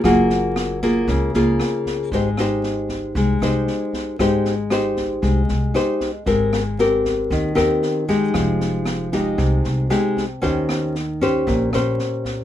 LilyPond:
<<
  \new Staff \with { instrumentName = "Nylon-string guitar" } { \time 4/4 \key aes \major \tempo 4 = 116 << { <bes f' aes'>4. <bes f' aes'>4 <bes f' aes'>4. | <ees' g' c''>8 <ees' g' c''>2 <ees' g' c''>4. | <ees' g' c''>8 r8 <ees' g' c''>4. r8 <ees' g' c''>8 r8 | <c' g' bes'>8 r8 <c' g' bes'>4. <c' g' bes'>4 <aes ees' g'>8~ |
<aes ees' g'>4. <aes ees' g'>4. <aes ees' g'>8 r8 | <des' g' c''>4 r8 <des' g' c''>4 <des' g' c''>4. | } \\ { ges2 des2 | aes2 aes2 | aes2 aes2 | aes2 ees2 |
f2 c2 | ees2 bes,2 | } >> }
  \new Staff \with { instrumentName = "Upright bass" } { \clef bass \time 4/4 \key aes \major ges,,2 des,8 des,8 r4 | aes,,2 c,8 c,8 r4 | aes,,2 c,8 c,8 r4 | aes,,2 ees,8 ees,8 r4 |
f,,2 c,8 c,8 r4 | ees,2 bes,,8 bes,,8 r4 | }
  \new DrumStaff \with { instrumentName = "Drums" } \drummode { \time 4/4 <bd ss sn>8 sn8 <ss sn>8 <bd sn>8 <bd sn>8 sn8 <ss sn>8 <bd sn>8 | <bd sn>8 <ss sn>8 sn8 <bd sn>8 <bd sn>8 <ss sn>8 sn8 <bd sn>8 | <bd ss sn>8 sn8 <ss sn>8 <bd sn>8 <bd sn>8 sn8 <ss sn>8 <bd sn>8 | <bd sn>8 <ss sn>8 sn8 <bd sn>8 <bd sn>8 <ss sn>8 sn8 <bd sn>8 |
<bd ss sn>8 sn8 <ss sn>8 <bd sn>8 <bd sn>8 sn8 <ss sn>8 <bd sn>8 | <bd sn>8 <ss sn>8 sn8 <bd sn>8 <bd sn>8 <ss sn>8 sn8 <bd sn>8 | }
>>